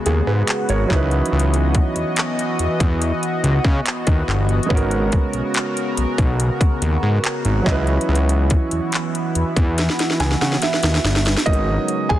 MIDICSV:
0, 0, Header, 1, 5, 480
1, 0, Start_track
1, 0, Tempo, 845070
1, 753, Time_signature, 4, 2, 24, 8
1, 6926, End_track
2, 0, Start_track
2, 0, Title_t, "Grand piano"
2, 0, Program_c, 0, 0
2, 0, Control_c, 0, 64, 127
2, 0, Note_on_c, 0, 56, 71
2, 0, Note_on_c, 0, 59, 63
2, 0, Note_on_c, 0, 61, 68
2, 0, Note_on_c, 0, 66, 62
2, 35, Note_on_c, 0, 68, 61
2, 148, Note_off_c, 0, 68, 0
2, 155, Note_on_c, 0, 71, 69
2, 159, Note_on_c, 0, 68, 58
2, 382, Note_off_c, 0, 71, 0
2, 384, Note_off_c, 0, 68, 0
2, 395, Note_on_c, 0, 73, 67
2, 398, Note_on_c, 0, 70, 57
2, 476, Note_off_c, 0, 56, 0
2, 483, Note_off_c, 0, 59, 0
2, 488, Note_on_c, 0, 54, 73
2, 490, Note_off_c, 0, 61, 0
2, 497, Note_off_c, 0, 66, 0
2, 502, Note_on_c, 0, 61, 67
2, 515, Note_on_c, 0, 63, 69
2, 520, Control_c, 0, 64, 0
2, 529, Note_on_c, 0, 64, 63
2, 542, Note_on_c, 0, 71, 82
2, 622, Note_off_c, 0, 73, 0
2, 623, Note_off_c, 0, 70, 0
2, 633, Control_c, 0, 64, 127
2, 2397, Note_off_c, 0, 54, 0
2, 2405, Note_off_c, 0, 61, 0
2, 2411, Note_off_c, 0, 63, 0
2, 2418, Note_off_c, 0, 64, 0
2, 2425, Note_off_c, 0, 71, 0
2, 2648, Note_on_c, 0, 56, 74
2, 2662, Note_on_c, 0, 59, 69
2, 2675, Note_on_c, 0, 61, 67
2, 2680, Control_c, 0, 64, 0
2, 2689, Note_on_c, 0, 66, 67
2, 2702, Note_on_c, 0, 70, 81
2, 2795, Control_c, 0, 64, 127
2, 4317, Note_off_c, 0, 56, 0
2, 4324, Note_off_c, 0, 59, 0
2, 4328, Note_on_c, 0, 54, 70
2, 4331, Note_off_c, 0, 61, 0
2, 4338, Note_off_c, 0, 66, 0
2, 4342, Note_on_c, 0, 61, 66
2, 4344, Note_off_c, 0, 70, 0
2, 4356, Note_on_c, 0, 75, 65
2, 4360, Control_c, 0, 64, 0
2, 4369, Note_on_c, 0, 64, 66
2, 4383, Note_on_c, 0, 71, 81
2, 4445, Control_c, 0, 64, 127
2, 5794, Note_on_c, 0, 80, 69
2, 5905, Note_off_c, 0, 80, 0
2, 5914, Note_on_c, 0, 78, 68
2, 6025, Note_off_c, 0, 78, 0
2, 6033, Note_on_c, 0, 76, 74
2, 6237, Note_off_c, 0, 54, 0
2, 6245, Note_off_c, 0, 61, 0
2, 6251, Note_off_c, 0, 75, 0
2, 6258, Note_off_c, 0, 64, 0
2, 6265, Note_off_c, 0, 71, 0
2, 6490, Note_off_c, 0, 76, 0
2, 6508, Note_on_c, 0, 75, 99
2, 6511, Note_on_c, 0, 54, 55
2, 6513, Note_on_c, 0, 70, 50
2, 6516, Note_on_c, 0, 59, 54
2, 6519, Control_c, 0, 64, 0
2, 6519, Note_on_c, 0, 61, 62
2, 6519, Note_on_c, 0, 63, 80
2, 6631, Control_c, 0, 64, 127
2, 6853, Note_off_c, 0, 63, 0
2, 6869, Note_on_c, 0, 80, 106
2, 6879, Note_on_c, 0, 68, 86
2, 6881, Note_off_c, 0, 75, 0
2, 6926, Note_off_c, 0, 54, 0
2, 6926, Note_off_c, 0, 59, 0
2, 6926, Note_off_c, 0, 61, 0
2, 6926, Note_off_c, 0, 68, 0
2, 6926, Note_off_c, 0, 70, 0
2, 6926, Note_off_c, 0, 80, 0
2, 6926, End_track
3, 0, Start_track
3, 0, Title_t, "Analog synth pad"
3, 0, Program_c, 1, 89
3, 0, Note_on_c, 1, 49, 75
3, 0, Note_on_c, 1, 56, 72
3, 0, Note_on_c, 1, 59, 71
3, 0, Note_on_c, 1, 66, 88
3, 495, Note_off_c, 1, 49, 0
3, 495, Note_off_c, 1, 56, 0
3, 509, Note_on_c, 1, 52, 76
3, 511, Note_on_c, 1, 75, 68
3, 2649, Note_off_c, 1, 52, 0
3, 2650, Note_off_c, 1, 75, 0
3, 2670, Note_on_c, 1, 49, 80
3, 2670, Note_on_c, 1, 70, 71
3, 4329, Note_off_c, 1, 59, 0
3, 4334, Note_off_c, 1, 49, 0
3, 4334, Note_off_c, 1, 70, 0
3, 4352, Note_on_c, 1, 52, 77
3, 4352, Note_on_c, 1, 59, 69
3, 4352, Note_on_c, 1, 64, 73
3, 6489, Note_off_c, 1, 66, 0
3, 6491, Note_off_c, 1, 52, 0
3, 6491, Note_off_c, 1, 59, 0
3, 6491, Note_off_c, 1, 64, 0
3, 6508, Note_on_c, 1, 49, 81
3, 6508, Note_on_c, 1, 56, 77
3, 6508, Note_on_c, 1, 66, 88
3, 6509, Note_on_c, 1, 54, 73
3, 6926, Note_off_c, 1, 49, 0
3, 6926, Note_off_c, 1, 54, 0
3, 6926, Note_off_c, 1, 56, 0
3, 6926, Note_off_c, 1, 66, 0
3, 6926, End_track
4, 0, Start_track
4, 0, Title_t, "Analog synth bass"
4, 0, Program_c, 2, 38
4, 35, Note_on_c, 2, 39, 97
4, 125, Note_off_c, 2, 39, 0
4, 155, Note_on_c, 2, 44, 94
4, 245, Note_off_c, 2, 44, 0
4, 395, Note_on_c, 2, 32, 94
4, 484, Note_off_c, 2, 32, 0
4, 513, Note_on_c, 2, 37, 108
4, 694, Note_off_c, 2, 37, 0
4, 753, Note_on_c, 2, 37, 106
4, 1024, Note_off_c, 2, 37, 0
4, 1113, Note_on_c, 2, 40, 46
4, 1161, Note_off_c, 2, 40, 0
4, 1474, Note_on_c, 2, 40, 49
4, 1522, Note_off_c, 2, 40, 0
4, 1593, Note_on_c, 2, 40, 96
4, 1774, Note_off_c, 2, 40, 0
4, 1952, Note_on_c, 2, 37, 97
4, 2043, Note_off_c, 2, 37, 0
4, 2071, Note_on_c, 2, 49, 98
4, 2162, Note_off_c, 2, 49, 0
4, 2313, Note_on_c, 2, 39, 81
4, 2403, Note_off_c, 2, 39, 0
4, 2433, Note_on_c, 2, 31, 98
4, 2614, Note_off_c, 2, 31, 0
4, 2672, Note_on_c, 2, 32, 108
4, 2944, Note_off_c, 2, 32, 0
4, 3034, Note_on_c, 2, 35, 47
4, 3082, Note_off_c, 2, 35, 0
4, 3396, Note_on_c, 2, 35, 47
4, 3443, Note_off_c, 2, 35, 0
4, 3513, Note_on_c, 2, 35, 100
4, 3694, Note_off_c, 2, 35, 0
4, 3873, Note_on_c, 2, 39, 98
4, 3963, Note_off_c, 2, 39, 0
4, 3993, Note_on_c, 2, 44, 99
4, 4083, Note_off_c, 2, 44, 0
4, 4233, Note_on_c, 2, 32, 91
4, 4323, Note_off_c, 2, 32, 0
4, 4353, Note_on_c, 2, 37, 115
4, 4534, Note_off_c, 2, 37, 0
4, 4594, Note_on_c, 2, 37, 108
4, 4865, Note_off_c, 2, 37, 0
4, 4955, Note_on_c, 2, 40, 46
4, 5002, Note_off_c, 2, 40, 0
4, 5315, Note_on_c, 2, 40, 49
4, 5362, Note_off_c, 2, 40, 0
4, 5435, Note_on_c, 2, 40, 98
4, 5615, Note_off_c, 2, 40, 0
4, 5794, Note_on_c, 2, 37, 96
4, 5884, Note_off_c, 2, 37, 0
4, 5916, Note_on_c, 2, 49, 103
4, 6005, Note_off_c, 2, 49, 0
4, 6153, Note_on_c, 2, 39, 89
4, 6244, Note_off_c, 2, 39, 0
4, 6273, Note_on_c, 2, 31, 93
4, 6454, Note_off_c, 2, 31, 0
4, 6512, Note_on_c, 2, 32, 112
4, 6693, Note_off_c, 2, 32, 0
4, 6875, Note_on_c, 2, 34, 91
4, 6926, Note_off_c, 2, 34, 0
4, 6926, End_track
5, 0, Start_track
5, 0, Title_t, "Drums"
5, 33, Note_on_c, 9, 42, 58
5, 90, Note_off_c, 9, 42, 0
5, 270, Note_on_c, 9, 42, 78
5, 277, Note_on_c, 9, 39, 103
5, 327, Note_off_c, 9, 42, 0
5, 334, Note_off_c, 9, 39, 0
5, 391, Note_on_c, 9, 42, 52
5, 448, Note_off_c, 9, 42, 0
5, 512, Note_on_c, 9, 36, 96
5, 520, Note_on_c, 9, 39, 61
5, 568, Note_off_c, 9, 36, 0
5, 576, Note_off_c, 9, 39, 0
5, 633, Note_on_c, 9, 42, 31
5, 689, Note_off_c, 9, 42, 0
5, 713, Note_on_c, 9, 42, 44
5, 770, Note_off_c, 9, 42, 0
5, 792, Note_on_c, 9, 42, 59
5, 849, Note_off_c, 9, 42, 0
5, 873, Note_on_c, 9, 42, 53
5, 930, Note_off_c, 9, 42, 0
5, 991, Note_on_c, 9, 42, 65
5, 992, Note_on_c, 9, 36, 89
5, 1048, Note_off_c, 9, 42, 0
5, 1049, Note_off_c, 9, 36, 0
5, 1112, Note_on_c, 9, 42, 50
5, 1169, Note_off_c, 9, 42, 0
5, 1229, Note_on_c, 9, 42, 65
5, 1239, Note_on_c, 9, 39, 104
5, 1286, Note_off_c, 9, 42, 0
5, 1296, Note_off_c, 9, 39, 0
5, 1357, Note_on_c, 9, 42, 49
5, 1414, Note_off_c, 9, 42, 0
5, 1473, Note_on_c, 9, 42, 76
5, 1530, Note_off_c, 9, 42, 0
5, 1592, Note_on_c, 9, 36, 91
5, 1592, Note_on_c, 9, 42, 52
5, 1649, Note_off_c, 9, 36, 0
5, 1649, Note_off_c, 9, 42, 0
5, 1713, Note_on_c, 9, 42, 74
5, 1770, Note_off_c, 9, 42, 0
5, 1834, Note_on_c, 9, 42, 48
5, 1891, Note_off_c, 9, 42, 0
5, 1954, Note_on_c, 9, 42, 58
5, 2011, Note_off_c, 9, 42, 0
5, 2070, Note_on_c, 9, 36, 103
5, 2127, Note_off_c, 9, 36, 0
5, 2191, Note_on_c, 9, 42, 76
5, 2197, Note_on_c, 9, 39, 111
5, 2248, Note_off_c, 9, 42, 0
5, 2254, Note_off_c, 9, 39, 0
5, 2310, Note_on_c, 9, 42, 55
5, 2312, Note_on_c, 9, 36, 84
5, 2367, Note_off_c, 9, 42, 0
5, 2369, Note_off_c, 9, 36, 0
5, 2439, Note_on_c, 9, 39, 57
5, 2495, Note_off_c, 9, 39, 0
5, 2550, Note_on_c, 9, 42, 32
5, 2607, Note_off_c, 9, 42, 0
5, 2630, Note_on_c, 9, 42, 41
5, 2671, Note_on_c, 9, 36, 121
5, 2687, Note_off_c, 9, 42, 0
5, 2710, Note_on_c, 9, 42, 60
5, 2728, Note_off_c, 9, 36, 0
5, 2767, Note_off_c, 9, 42, 0
5, 2790, Note_on_c, 9, 42, 52
5, 2847, Note_off_c, 9, 42, 0
5, 2909, Note_on_c, 9, 42, 67
5, 2912, Note_on_c, 9, 36, 89
5, 2966, Note_off_c, 9, 42, 0
5, 2968, Note_off_c, 9, 36, 0
5, 3030, Note_on_c, 9, 42, 50
5, 3087, Note_off_c, 9, 42, 0
5, 3148, Note_on_c, 9, 42, 66
5, 3158, Note_on_c, 9, 39, 96
5, 3205, Note_off_c, 9, 42, 0
5, 3215, Note_off_c, 9, 39, 0
5, 3276, Note_on_c, 9, 42, 49
5, 3333, Note_off_c, 9, 42, 0
5, 3393, Note_on_c, 9, 42, 70
5, 3450, Note_off_c, 9, 42, 0
5, 3512, Note_on_c, 9, 36, 99
5, 3512, Note_on_c, 9, 42, 54
5, 3569, Note_off_c, 9, 36, 0
5, 3569, Note_off_c, 9, 42, 0
5, 3634, Note_on_c, 9, 42, 74
5, 3690, Note_off_c, 9, 42, 0
5, 3753, Note_on_c, 9, 36, 90
5, 3755, Note_on_c, 9, 42, 47
5, 3809, Note_off_c, 9, 36, 0
5, 3811, Note_off_c, 9, 42, 0
5, 3873, Note_on_c, 9, 42, 58
5, 3930, Note_off_c, 9, 42, 0
5, 4111, Note_on_c, 9, 42, 78
5, 4118, Note_on_c, 9, 39, 104
5, 4168, Note_off_c, 9, 42, 0
5, 4175, Note_off_c, 9, 39, 0
5, 4230, Note_on_c, 9, 42, 54
5, 4287, Note_off_c, 9, 42, 0
5, 4352, Note_on_c, 9, 36, 99
5, 4358, Note_on_c, 9, 39, 60
5, 4408, Note_off_c, 9, 36, 0
5, 4415, Note_off_c, 9, 39, 0
5, 4471, Note_on_c, 9, 42, 33
5, 4527, Note_off_c, 9, 42, 0
5, 4550, Note_on_c, 9, 42, 44
5, 4607, Note_off_c, 9, 42, 0
5, 4631, Note_on_c, 9, 42, 55
5, 4688, Note_off_c, 9, 42, 0
5, 4710, Note_on_c, 9, 42, 53
5, 4767, Note_off_c, 9, 42, 0
5, 4828, Note_on_c, 9, 42, 70
5, 4832, Note_on_c, 9, 36, 96
5, 4885, Note_off_c, 9, 42, 0
5, 4888, Note_off_c, 9, 36, 0
5, 4949, Note_on_c, 9, 42, 52
5, 5006, Note_off_c, 9, 42, 0
5, 5068, Note_on_c, 9, 42, 70
5, 5078, Note_on_c, 9, 39, 101
5, 5125, Note_off_c, 9, 42, 0
5, 5135, Note_off_c, 9, 39, 0
5, 5197, Note_on_c, 9, 42, 49
5, 5253, Note_off_c, 9, 42, 0
5, 5313, Note_on_c, 9, 42, 75
5, 5370, Note_off_c, 9, 42, 0
5, 5433, Note_on_c, 9, 36, 93
5, 5434, Note_on_c, 9, 42, 54
5, 5490, Note_off_c, 9, 36, 0
5, 5491, Note_off_c, 9, 42, 0
5, 5554, Note_on_c, 9, 42, 68
5, 5561, Note_on_c, 9, 38, 61
5, 5611, Note_off_c, 9, 42, 0
5, 5618, Note_off_c, 9, 38, 0
5, 5621, Note_on_c, 9, 38, 52
5, 5675, Note_on_c, 9, 42, 48
5, 5678, Note_off_c, 9, 38, 0
5, 5681, Note_on_c, 9, 38, 61
5, 5732, Note_off_c, 9, 42, 0
5, 5738, Note_off_c, 9, 38, 0
5, 5740, Note_on_c, 9, 38, 56
5, 5794, Note_on_c, 9, 42, 59
5, 5797, Note_off_c, 9, 38, 0
5, 5800, Note_on_c, 9, 38, 69
5, 5850, Note_off_c, 9, 42, 0
5, 5857, Note_off_c, 9, 38, 0
5, 5859, Note_on_c, 9, 38, 61
5, 5916, Note_off_c, 9, 38, 0
5, 5919, Note_on_c, 9, 38, 84
5, 5976, Note_off_c, 9, 38, 0
5, 5979, Note_on_c, 9, 38, 72
5, 6030, Note_on_c, 9, 42, 77
5, 6036, Note_off_c, 9, 38, 0
5, 6039, Note_on_c, 9, 38, 75
5, 6087, Note_off_c, 9, 42, 0
5, 6095, Note_off_c, 9, 38, 0
5, 6099, Note_on_c, 9, 38, 69
5, 6150, Note_on_c, 9, 42, 54
5, 6156, Note_off_c, 9, 38, 0
5, 6158, Note_on_c, 9, 38, 86
5, 6207, Note_off_c, 9, 42, 0
5, 6215, Note_off_c, 9, 38, 0
5, 6219, Note_on_c, 9, 38, 74
5, 6276, Note_off_c, 9, 38, 0
5, 6278, Note_on_c, 9, 38, 89
5, 6335, Note_off_c, 9, 38, 0
5, 6339, Note_on_c, 9, 38, 81
5, 6391, Note_on_c, 9, 42, 33
5, 6396, Note_off_c, 9, 38, 0
5, 6399, Note_on_c, 9, 38, 92
5, 6448, Note_off_c, 9, 42, 0
5, 6456, Note_off_c, 9, 38, 0
5, 6460, Note_on_c, 9, 38, 82
5, 6471, Note_on_c, 9, 42, 43
5, 6511, Note_off_c, 9, 42, 0
5, 6511, Note_on_c, 9, 42, 64
5, 6512, Note_on_c, 9, 36, 117
5, 6517, Note_off_c, 9, 38, 0
5, 6551, Note_off_c, 9, 42, 0
5, 6551, Note_on_c, 9, 42, 62
5, 6568, Note_off_c, 9, 36, 0
5, 6608, Note_off_c, 9, 42, 0
5, 6751, Note_on_c, 9, 42, 61
5, 6807, Note_off_c, 9, 42, 0
5, 6872, Note_on_c, 9, 36, 92
5, 6926, Note_off_c, 9, 36, 0
5, 6926, End_track
0, 0, End_of_file